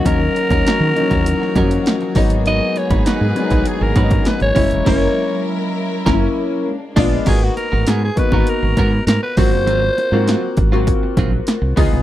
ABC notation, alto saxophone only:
X:1
M:4/4
L:1/16
Q:1/4=100
K:G#m
V:1 name="Alto saxophone"
A12- A2 z2 | d2 c2 B4 G A3 B c3 | c4 z12 | G F A2 G G B2 A4 A B ^B2- |
^B6 z8 z2 |]